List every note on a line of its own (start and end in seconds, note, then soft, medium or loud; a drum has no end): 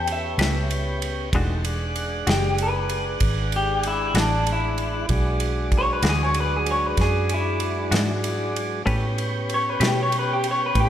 0.00 0.36 E2 medium
0.00 1.30 B3 medium
0.00 1.30 C#4 medium
0.00 1.30 G4 medium
0.07 ride medium
0.12 1.94 E5 medium
0.38 1.29 C#2 medium
0.38 0.58 A3 soft
0.38 0.58 C#4 medium
0.38 0.58 G4 medium
0.38 0.57 B4 medium
0.38 snare loud
0.38 ride medium
0.71 ride medium
1.02 ride medium
1.33 2.24 E1 medium
1.33 1.65 D#3 medium
1.33 1.52 E3 medium
1.33 1.52 G#3 medium
1.33 1.64 A3 medium
1.33 1.53 D4 medium
1.33 1.53 F#4 medium
1.33 1.65 G4 medium
1.33 kick loud
1.33 ride medium
1.65 5.07 G#3 medium
1.65 5.06 D4 medium
1.65 5.06 F#5 medium
1.65 ride medium
1.96 ride medium
2.27 3.18 F#1 medium
2.27 2.46 E3 soft
2.27 2.46 G#3 soft
2.27 2.46 D4 medium
2.27 2.46 F#4 medium
2.27 2.59 G4 medium
2.27 snare medium
2.27 ride medium
2.58 ride medium
2.62 3.52 B4 medium
2.90 ride medium
3.20 4.12 G#1 medium
3.20 kick medium
3.20 ride medium
3.52 ride medium
3.56 3.85 G4 medium
3.83 4.16 E4 medium
3.83 ride medium
4.14 5.06 A1 medium
4.14 4.35 E3 medium
4.14 4.34 G#3 medium
4.14 4.34 D4 medium
4.14 4.34 F#4 medium
4.14 snare medium
4.14 ride medium
4.20 4.48 D4 medium
4.47 ride medium
4.52 5.10 E4 medium
4.78 ride soft
5.09 6.00 B1 medium
5.09 8.82 F#3 medium
5.09 8.82 G#3 medium
5.09 8.83 D4 medium
5.09 kick medium
5.09 ride medium
5.40 ride medium
5.72 kick medium
5.72 ride soft
5.78 5.90 C#5 loud
5.93 6.06 B4 medium
6.03 6.94 D2 medium
6.03 6.23 E3 soft
6.03 6.23 G#3 soft
6.03 6.22 D4 medium
6.03 6.22 F#4 medium
6.03 snare medium
6.03 ride medium
6.09 6.21 G#4 medium
6.24 6.37 C#5 medium
6.34 ride medium
6.40 6.53 B4 medium
6.56 6.69 G#4 medium
6.66 ride medium
6.71 6.87 C#5 medium
6.87 6.99 B4 medium
6.97 7.89 F#2 medium
6.97 7.30 G#4 medium
6.97 kick medium
6.97 snare soft
6.97 ride medium
7.29 ride medium
7.34 8.53 E4 medium
7.60 ride medium
7.91 8.83 G#2 medium
7.91 8.12 E3 soft
7.91 8.11 G#3 soft
7.91 8.11 D4 medium
7.91 8.10 F#4 medium
7.91 snare loud
7.91 ride medium
8.24 ride medium
8.56 ride medium
8.86 9.78 A2 medium
8.86 9.05 A3 medium
8.86 10.89 B3 medium
8.86 9.05 C#4 medium
8.86 10.89 C#4 medium
8.86 9.05 G4 medium
8.86 10.89 G4 medium
8.86 9.05 B4 medium
8.86 kick medium
8.86 ride medium
9.18 ride medium
9.50 ride soft
9.54 9.70 C#5 loud
9.70 9.82 B4 medium
9.80 10.72 B2 medium
9.80 10.00 A3 soft
9.80 10.00 C#4 soft
9.80 10.00 G4 medium
9.80 9.99 B4 medium
9.80 snare loud
9.80 ride medium
9.87 9.99 G4 medium
10.03 10.15 C#5 medium
10.12 ride medium
10.19 10.31 B4 medium
10.33 10.46 G4 medium
10.44 ride medium
10.51 10.62 C#5 medium
10.66 10.78 B4 medium
10.75 10.89 A2 medium
10.75 kick medium
10.75 ride medium
10.80 10.89 G4 medium